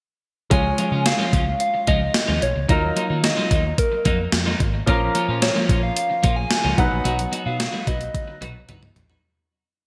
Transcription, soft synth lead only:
0, 0, Header, 1, 2, 480
1, 0, Start_track
1, 0, Tempo, 545455
1, 448, Time_signature, 4, 2, 24, 8
1, 8683, End_track
2, 0, Start_track
2, 0, Title_t, "Soft synth lead"
2, 0, Program_c, 0, 80
2, 454, Note_on_c, 0, 80, 115
2, 937, Note_on_c, 0, 77, 104
2, 950, Note_off_c, 0, 80, 0
2, 1409, Note_off_c, 0, 77, 0
2, 1415, Note_on_c, 0, 77, 97
2, 1653, Note_on_c, 0, 75, 100
2, 1667, Note_off_c, 0, 77, 0
2, 2136, Note_on_c, 0, 73, 90
2, 2149, Note_off_c, 0, 75, 0
2, 2373, Note_on_c, 0, 75, 96
2, 2386, Note_off_c, 0, 73, 0
2, 2850, Note_off_c, 0, 75, 0
2, 2855, Note_on_c, 0, 75, 99
2, 3334, Note_on_c, 0, 70, 81
2, 3347, Note_off_c, 0, 75, 0
2, 4051, Note_off_c, 0, 70, 0
2, 4773, Note_on_c, 0, 73, 89
2, 5132, Note_on_c, 0, 77, 97
2, 5145, Note_off_c, 0, 73, 0
2, 5245, Note_off_c, 0, 77, 0
2, 5250, Note_on_c, 0, 77, 95
2, 5600, Note_on_c, 0, 80, 110
2, 5613, Note_off_c, 0, 77, 0
2, 5970, Note_on_c, 0, 78, 112
2, 5984, Note_off_c, 0, 80, 0
2, 6569, Note_on_c, 0, 77, 92
2, 6582, Note_off_c, 0, 78, 0
2, 6931, Note_on_c, 0, 75, 90
2, 6945, Note_off_c, 0, 77, 0
2, 7890, Note_off_c, 0, 75, 0
2, 8683, End_track
0, 0, End_of_file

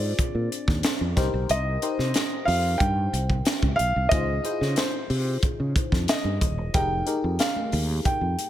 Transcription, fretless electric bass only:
0, 0, Header, 1, 3, 480
1, 0, Start_track
1, 0, Tempo, 655738
1, 1094, Time_signature, 4, 2, 24, 8
1, 6220, End_track
2, 0, Start_track
2, 0, Title_t, "Fretless electric bass"
2, 0, Program_c, 0, 35
2, 0, Note_on_c, 0, 44, 92
2, 89, Note_off_c, 0, 44, 0
2, 254, Note_on_c, 0, 46, 73
2, 351, Note_off_c, 0, 46, 0
2, 496, Note_on_c, 0, 39, 83
2, 593, Note_off_c, 0, 39, 0
2, 738, Note_on_c, 0, 41, 79
2, 834, Note_off_c, 0, 41, 0
2, 855, Note_on_c, 0, 36, 76
2, 952, Note_off_c, 0, 36, 0
2, 978, Note_on_c, 0, 35, 84
2, 1074, Note_off_c, 0, 35, 0
2, 1096, Note_on_c, 0, 36, 102
2, 1290, Note_off_c, 0, 36, 0
2, 1456, Note_on_c, 0, 48, 89
2, 1553, Note_off_c, 0, 48, 0
2, 1813, Note_on_c, 0, 41, 98
2, 2009, Note_off_c, 0, 41, 0
2, 2054, Note_on_c, 0, 43, 92
2, 2249, Note_off_c, 0, 43, 0
2, 2293, Note_on_c, 0, 36, 90
2, 2488, Note_off_c, 0, 36, 0
2, 2654, Note_on_c, 0, 37, 80
2, 2752, Note_off_c, 0, 37, 0
2, 2778, Note_on_c, 0, 35, 68
2, 2874, Note_off_c, 0, 35, 0
2, 2900, Note_on_c, 0, 36, 85
2, 2995, Note_off_c, 0, 36, 0
2, 3010, Note_on_c, 0, 37, 102
2, 3207, Note_off_c, 0, 37, 0
2, 3375, Note_on_c, 0, 49, 86
2, 3472, Note_off_c, 0, 49, 0
2, 3732, Note_on_c, 0, 48, 93
2, 3928, Note_off_c, 0, 48, 0
2, 4097, Note_on_c, 0, 49, 74
2, 4194, Note_off_c, 0, 49, 0
2, 4334, Note_on_c, 0, 41, 85
2, 4432, Note_off_c, 0, 41, 0
2, 4571, Note_on_c, 0, 43, 83
2, 4670, Note_off_c, 0, 43, 0
2, 4697, Note_on_c, 0, 27, 67
2, 4817, Note_off_c, 0, 27, 0
2, 4817, Note_on_c, 0, 28, 80
2, 4913, Note_off_c, 0, 28, 0
2, 4935, Note_on_c, 0, 29, 95
2, 5130, Note_off_c, 0, 29, 0
2, 5300, Note_on_c, 0, 41, 77
2, 5395, Note_off_c, 0, 41, 0
2, 5658, Note_on_c, 0, 39, 101
2, 5852, Note_off_c, 0, 39, 0
2, 6011, Note_on_c, 0, 41, 73
2, 6110, Note_off_c, 0, 41, 0
2, 6220, End_track
3, 0, Start_track
3, 0, Title_t, "Muted fretless electric bass strokes"
3, 137, Note_on_c, 9, 29, 42
3, 210, Note_off_c, 9, 29, 0
3, 3970, Note_on_c, 9, 29, 44
3, 4043, Note_off_c, 9, 29, 0
3, 5896, Note_on_c, 9, 29, 40
3, 5969, Note_off_c, 9, 29, 0
3, 6220, End_track
0, 0, End_of_file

